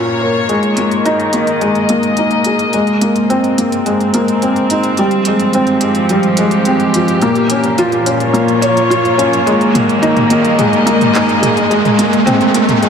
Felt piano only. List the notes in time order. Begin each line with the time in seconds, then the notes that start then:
Already playing: A#3 C#4 F4
0.21 A#4
0.49 G#3
0.78 A#3
1.05 D#4
1.34 A#3
1.61 G#3
1.90 A#3
2.18 D#4
2.46 G#4
2.73 G#3
3.02 A#3
3.30 C4
3.58 A#3
3.86 G#3
4.14 A#3
4.43 C4
4.71 D#4
4.99 G3
5.27 G#3
5.54 C4
5.82 G#3
6.10 G3
6.38 G#3
6.67 C4
6.95 F4
7.22 A#3
7.51 C#4
7.78 F4
8.06 C#4
8.33 A#3
8.61 C#5
8.90 F4
9.18 C#4
9.46 G#3
9.74 A#3
10.02 D#4
10.30 A#3
10.58 G#3
10.86 A#3
11.15 D#4
11.42 G#4
11.70 G#3
11.99 A#3
12.26 C4
12.54 A#3
12.82 G#3